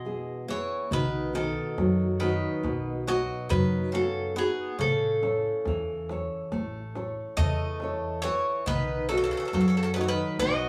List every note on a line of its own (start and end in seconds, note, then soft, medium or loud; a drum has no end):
0.00 0.45 B2 medium
0.00 0.44 G#3 medium
0.00 0.51 D#5 medium
0.05 0.48 B3 soft
0.05 0.47 E4 soft
0.05 0.48 G#4 soft
0.48 0.88 E3 medium
0.48 0.83 B3 soft
0.48 0.83 E4 soft
0.48 0.84 G#4 soft
0.48 0.93 C#5 medium
0.91 1.52 B1 medium
0.91 1.75 B2 medium
0.91 1.32 D#3 medium
0.91 1.32 B4 medium
0.91 darbuka dum medium
1.33 2.17 D#3 medium
1.33 2.03 B3 soft
1.33 2.03 D#4 soft
1.33 2.03 F#4 medium
1.33 2.24 A4 medium
1.33 darbuka tek medium
1.78 2.38 F#2 medium
1.78 2.61 F#3 medium
1.78 darbuka tek medium
2.00 darbuka tek soft
2.20 3.02 D#3 medium
2.20 2.90 B3 medium
2.20 2.90 D#4 soft
2.20 2.91 F#4 medium
2.20 3.03 B4 medium
2.20 darbuka tek medium
2.63 3.24 B1 medium
2.63 3.47 B2 medium
2.63 darbuka tek medium
3.07 3.47 F#3 medium
3.07 3.76 B3 soft
3.07 3.76 D#4 soft
3.07 3.76 F#4 soft
3.07 3.50 D#5 medium
3.07 darbuka tek medium
3.49 4.40 F#2 medium
3.49 3.90 D#3 medium
3.49 4.34 F#3 medium
3.49 3.90 B4 medium
3.49 darbuka dum medium
3.72 darbuka tek soft
3.92 4.33 C#3 medium
3.92 4.35 B3 soft
3.92 4.35 D#4 soft
3.92 4.36 F#4 medium
3.92 4.38 A4 medium
3.92 darbuka tek medium
4.36 4.76 B3 medium
4.36 4.71 B3 soft
4.36 4.71 D#4 soft
4.36 4.71 F#4 medium
4.36 4.80 G#4 medium
4.36 darbuka tek medium
4.79 5.39 A1 medium
4.79 7.33 C#3 medium
4.79 5.63 A3 medium
4.79 7.46 A4 medium
4.79 darbuka dum medium
5.22 5.91 E4 soft
5.22 5.92 A4 soft
5.22 5.92 C#5 soft
5.22 darbuka tek medium
5.66 6.26 E2 loud
5.66 6.50 E3 medium
5.66 darbuka tek medium
5.88 darbuka tek soft
6.09 6.78 E4 soft
6.09 6.79 A4 soft
6.09 6.79 C#5 medium
6.09 darbuka tek medium
6.52 7.12 A1 medium
6.52 7.35 A3 medium
6.52 darbuka tek medium
6.95 7.64 E4 soft
6.95 7.65 A4 soft
6.95 7.64 C#5 soft
6.95 darbuka tek medium
7.37 8.28 E2 loud
7.37 8.22 E3 medium
7.37 8.19 A3 medium
7.37 8.19 D#5 medium
7.37 darbuka dum medium
7.60 darbuka tek soft
7.80 8.23 E4 soft
7.80 8.23 A4 soft
7.80 8.24 C#5 medium
7.80 darbuka tek medium
8.22 8.64 E3 medium
8.22 8.58 E4 soft
8.22 8.59 A4 soft
8.22 8.67 C#5 medium
8.22 8.59 C#5 soft
8.22 darbuka tek medium
8.66 9.27 B1 medium
8.66 9.07 D#3 medium
8.66 9.11 B3 medium
8.66 9.07 B4 medium
8.66 darbuka dum medium
9.09 9.16 C#3 medium
9.09 9.79 F#4 soft
9.09 9.16 A4 medium
9.09 9.80 B4 soft
9.09 9.80 D#5 soft
9.09 darbuka tek medium
9.17 9.24 C#3 soft
9.17 9.22 A4 medium
9.24 9.31 C#3 medium
9.24 9.30 A4 medium
9.31 9.39 C#3 soft
9.31 9.36 A4 medium
9.37 9.44 C#3 medium
9.37 9.45 A4 medium
9.45 9.52 C#3 soft
9.45 9.53 A4 medium
9.53 10.13 F#2 medium
9.53 9.59 C#3 soft
9.53 10.37 F#3 medium
9.53 9.60 A4 medium
9.53 darbuka tek medium
9.60 9.68 C#3 soft
9.60 9.67 A4 medium
9.68 9.76 C#3 medium
9.68 9.75 A4 medium
9.77 9.83 C#3 soft
9.77 9.82 A4 medium
9.83 9.91 C#3 medium
9.83 9.90 A4 medium
9.94 10.03 D#3 medium
9.94 10.65 F#4 medium
9.94 10.00 B4 medium
9.94 10.66 B4 soft
9.94 darbuka tek medium
9.98 10.08 C#5 medium
9.98 10.66 D#5 medium
10.03 10.09 E3 soft
10.08 10.37 D#3 medium
10.08 10.39 B4 medium
10.39 10.69 B1 medium
10.39 10.69 F#3 medium
10.39 10.69 B3 medium
10.39 10.69 D#5 loud
10.39 darbuka tek medium